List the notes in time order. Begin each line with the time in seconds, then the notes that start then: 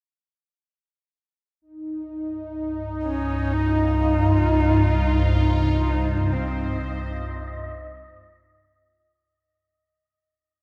1.60 C2 G2 D#4
3.04 C#4
3.46 F4
3.53 D#4
5.01 C5
5.37 D#4 D#5
6.32 C4